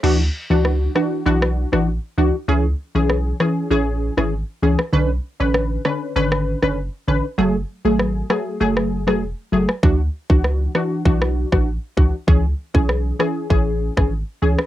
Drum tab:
CC |x---------------|----------------|----------------|----------------|
SD |----r-r--r-r----|----r-r----r---r|----r-r--r-r----|----r-r--r-r---r|
BD |----------------|----------------|----------------|----------------|

CC |----------------|----------------|
SD |----r-r--r-r----|----r-r----r---r|
BD |o--o----o--o--o-|o--o----o--o----|